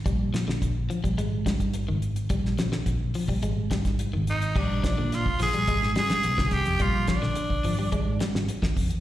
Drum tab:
CC |----------------|----------------|x---------------|----------------|
HH |x-x-x-xxx-xxx-xx|x-x-x-o-x-xxx-xx|--x-x-oxx-xxx-xx|x-x-x-o-x-x-x-ox|
SD |--oo------o-----|-ooo------oo----|--o-o-o--ooo-oo-|--oo------oo-o--|
BD |o---o--o--oo----|o---o--o--oo----|o-o--o--o----oo-|o-o--o--o----oo-|